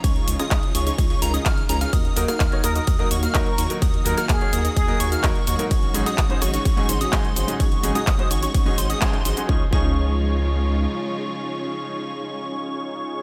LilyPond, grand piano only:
\new Staff \with { instrumentName = "Grand piano" } { \time 4/4 \key des \major \tempo 4 = 127 r1 | r8 <ges bes ees' bes'>16 r8 <ges bes ees' des''>16 r8. <ges bes ees' bes'>16 r8 <ges bes ees' bes'>16 r8 <ges bes ees' bes'>16 | r8 <ges bes ees' bes'>16 r8 <ges bes ees' des''>16 r8. <ges bes ees' bes'>16 r8 <ges bes ees' bes'>16 r8 <aes, ges bes ees' bes'>16 | r8 <aes, ges des' ees' aes'>16 r8 <aes, ges des' ees' c''>16 r8. <aes, ges des' ees' aes'>16 r8 <aes, ges des' ees' aes'>16 r8 <aes, ges des' ees' aes'>16 |
r8 <aes, ges des' ees' aes'>16 r8 <aes, ges des' ees' c''>16 r8. <aes, ges des' ees' aes'>16 r8 <aes, ges des' ees' aes'>16 r8 <ges des' ees' aes'>16 | <f des' ees' aes'>16 r16 <f des' ees' aes'>2.~ <f des' ees' aes'>8~ | <f des' ees' aes'>1 | }